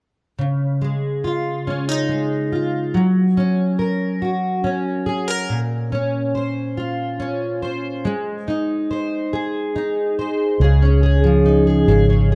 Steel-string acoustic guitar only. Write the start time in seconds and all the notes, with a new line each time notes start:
0.39 C#3
0.81 G#3
1.24 F4
1.67 C#4
1.89 D#4
2.09 G#3
2.52 F4
2.94 F#3
3.37 C#4
3.79 A#4
4.22 F#4
4.64 C#4
5.06 G#4
5.28 A#4
5.49 A#2
5.92 C#4
6.35 C5
6.77 F4
7.20 C#4
7.62 C5
8.05 G#3
8.48 D#4
8.91 C5
9.33 G#4
9.76 D#4
10.19 C5
10.61 C#3 G#4
10.82 C#4
11.03 G#4
11.24 F3
11.46 D#4
11.67 G#4
11.88 C#3 G#4
12.10 C#4